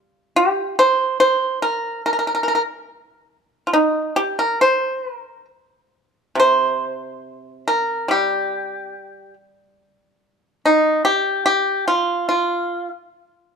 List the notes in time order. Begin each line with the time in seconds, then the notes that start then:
Already playing: G3
0.36 G4
0.79 C5
1.20 C5
1.62 A#4
2.06 A#4
2.13 A#4
2.19 A#4
2.27 A#4
2.35 A#4
2.43 A#4
2.48 A#4
2.55 A#4
3.67 F4
3.73 D#4
4.16 G4
4.39 A#4
4.61 C5
5.14 A#4
6.35 C3
6.40 C5
7.68 A#4
8.08 G3 G4
10.65 D#4
11.05 G4
11.46 G4
11.88 F4
12.29 F4